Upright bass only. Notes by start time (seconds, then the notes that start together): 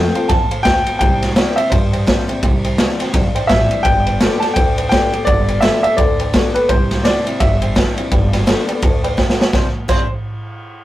Already playing: F2
0.30 E2
0.51 muted upright bass stroke
0.65 D2
0.87 muted upright bass stroke
1.01 C2
1.58 muted upright bass stroke
1.72 G2
2.29 muted upright bass stroke
2.43 C2
3.00 muted upright bass stroke
3.14 B1
3.35 muted upright bass stroke
3.49 A1
3.71 muted upright bass stroke
3.85 G1
4.42 muted upright bass stroke
4.56 D2
5.13 muted upright bass stroke
5.27 G1
5.84 muted upright bass stroke
5.98 D2
6.55 muted upright bass stroke
6.69 C2
7.27 muted upright bass stroke
7.40 G1
7.97 muted upright bass stroke
8.12 G1
8.68 muted upright bass stroke
8.83 D2
9.39 muted upright bass stroke
9.53 C2
9.89 C2